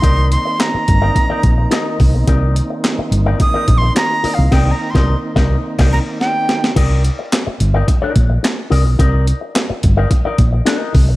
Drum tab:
CC |----------------|----------------|x--------x------|x---------------|
HH |x-x-x-x-x-x-x-o-|x-x-x-x-x-x-x-o-|----------------|x-x-x-x-x-x-x-o-|
CP |----x-------x---|----x-------x---|----------------|----x-------x---|
SD |----o-------o---|----o-------o---|o--o--o--o--o-oo|----o-------o---|
BD |o-----o-o-o---o-|o-------o-o-----|o--o--o--o------|o-------o-o-----|

CC |----------------|
HH |x-x-x-x-x-x-x-o-|
CP |----x-------x---|
SD |----o-------o---|
BD |o-----o-o-o---o-|